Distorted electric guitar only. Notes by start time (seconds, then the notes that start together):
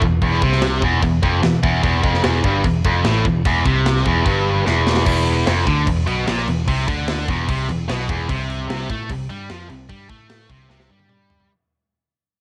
0.03 E2
0.22 E2
0.43 C3
0.83 E2
1.03 E2
1.23 F2
1.43 E2
1.63 E2
1.84 E2
2.03 F2
2.24 E2
2.45 G2
2.65 E2
2.85 F2
3.06 A2
3.25 E2
3.46 E2
3.66 C3
4.06 E2
4.26 G2
4.66 E2
5.07 E2
5.47 F2
5.66 D3
5.87 E2
6.07 B2
6.27 A#2
6.47 E2
6.68 C3
6.88 D3
7.29 E2
7.48 C3
7.69 E2
7.88 B2
8.09 E2
8.29 C3
8.68 C3
8.90 A3
9.10 C3
9.30 G3
9.50 F3
9.70 C3
9.90 G3
10.10 A3
10.49 C3
10.70 C3
10.90 G3
11.09 G3